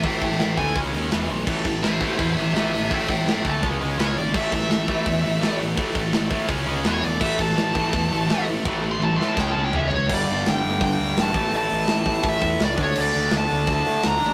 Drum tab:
CC |----------------|x---------------|----------------|x---------------|
HH |o-o-o-o-o-o-o-o-|--o-o-o-o-o-o-o-|o-o-o-o-o-o-o-o-|--o-o-o-o-o-o-o-|
SD |---oo-------o---|----o-------o---|---oo-------o---|---oo-------o---|
T2 |----------------|----------------|----------------|----------------|
FT |----------------|----------------|----------------|----------------|
BD |o-o---o-o-------|o-o---o-o-------|o-o---o-o-------|o-o---o-o-------|

CC |----------------|x---------------|----------------|x---------------|
HH |o-o-o-o-o-o-o-o-|--o-o-o-o-o-o-o-|----------------|--o-o-o-o-o-o-o-|
SD |----o-------o---|---oo-------o---|------o-o-------|----o-------o---|
T2 |----------------|----------------|----o-----------|----------------|
FT |----------------|----------------|------------o-o-|----------------|
BD |o-o---o-o-------|o-o---o-o-------|o-------o-------|o-------o-----o-|

CC |----------------|x---------------|
HH |o-o-o-o-o-o-o-o-|--o-o-o-o-o-o-o-|
SD |----o-------o---|----o-------o---|
T2 |----------------|----------------|
FT |----------------|----------------|
BD |------o-o-o---o-|--------o-------|